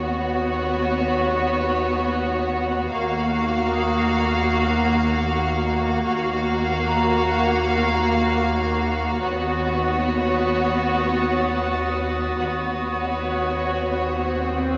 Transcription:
Already playing: D#2 B3 F#4 C#5
2.91 D#2 A#3 F#4 F5
3.72 D#6
6.06 D#2 A#3 F#4 F5
6.85 A#4 A#5
9.22 D#2 B3 F#4 C#5 D#6 A6
12.38 D#2 B3 F#4 C#5, swell
13.05 G#6
14.36 F#5

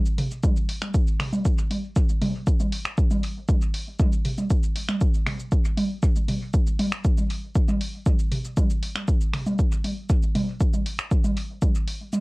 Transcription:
0.06 shaker
0.18 open hi-hat, mid tom
0.31 shaker
0.44 kick, high tom, shaker
0.57 shaker
0.69 open hi-hat
0.82 finger snap, high tom, shaker
0.94 kick, shaker
1.07 shaker
1.20 finger snap, open hi-hat, mid tom
1.33 high tom, shaker
1.45 kick, shaker
1.58 shaker
1.71 open hi-hat, high tom
1.96 kick, shaker
2.09 shaker
2.22 open hi-hat, mid tom, high tom
2.47 kick, shaker
2.60 high tom, shaker
2.72 open hi-hat
2.85 finger snap, shaker
2.98 kick, shaker
3.11 high tom, shaker
3.23 open hi-hat
3.49 kick, high tom, shaker
3.62 shaker
3.74 open hi-hat
3.99 kick, high tom, shaker
4.12 shaker
4.25 open hi-hat, mid tom
4.38 high tom, shaker
4.50 kick, shaker
4.63 shaker
4.76 open hi-hat
4.89 finger snap, high tom, shaker
5.01 kick, shaker
5.14 shaker
5.27 finger snap, open hi-hat, mid tom, high tom
5.40 shaker
5.52 kick, shaker
5.65 shaker
5.77 open hi-hat, high tom
6.03 kick, shaker
6.16 shaker
6.28 open hi-hat, mid tom, high tom
6.54 kick, shaker
6.67 shaker
6.79 open hi-hat, high tom
6.92 finger snap, shaker
7.05 kick, shaker
7.17 high tom, shaker
7.30 open hi-hat
7.55 kick, shaker
7.68 high tom, shaker
7.81 open hi-hat
8.06 kick, high tom, shaker
8.19 shaker
8.32 open hi-hat, mid tom
8.45 shaker
8.57 kick, high tom, shaker
8.70 shaker
8.83 open hi-hat
8.95 finger snap, high tom, shaker
9.08 kick, shaker
9.21 shaker
9.33 finger snap, open hi-hat, mid tom
9.46 high tom, shaker
9.59 kick, shaker
9.72 shaker
9.84 open hi-hat, high tom
10.10 kick, shaker
10.23 shaker
10.35 open hi-hat, mid tom, high tom
10.61 kick, shaker
10.73 high tom, shaker
10.86 open hi-hat
10.99 finger snap, shaker
11.11 kick, shaker
11.24 high tom, shaker
11.37 open hi-hat
11.62 kick, high tom, shaker
11.75 shaker
11.88 open hi-hat
12.13 high tom, shaker

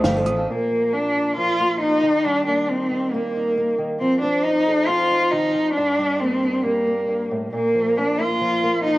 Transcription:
Already playing: F3 A3 D#4 D#5 D#6
0.04 G1 F3 C4 D#4 G4 A4 F5, snare, closed hi-hat
0.16 A4
0.25 A1 F3 C4 D#4 A4 D#6, closed hi-hat
0.36 C4 D#4 A4 F5
0.49 A#2 F3 A#3 F4 A#4
0.71 F3
0.93 A#3 D4
1.16 F4
1.37 F3 F4
1.60 A#3
1.81 D#4 F4
2.03 D#3
2.25 G3 D4
2.47 A#3 D4
2.69 C4 D#4
2.91 G3
3.13 A#3
3.36 D#4
3.58 A#3
3.78 D#3
4.00 F3 C4
4.21 C4 D4
4.43 D#4
4.67 A4
4.87 C4 F4
5.11 D#4
5.31 D#3 D#4
5.54 F3
5.74 G2 D4
5.98 G3
6.20 A#3 C4
6.43 D4
6.63 G3 A#3
6.87 A#3
7.09 G2
7.31 A2
7.53 A#2 A#3
7.75 F3
7.97 A#3 D4
8.20 A#3 F4
8.41 F3
8.64 A#3
8.84 D#4 F4

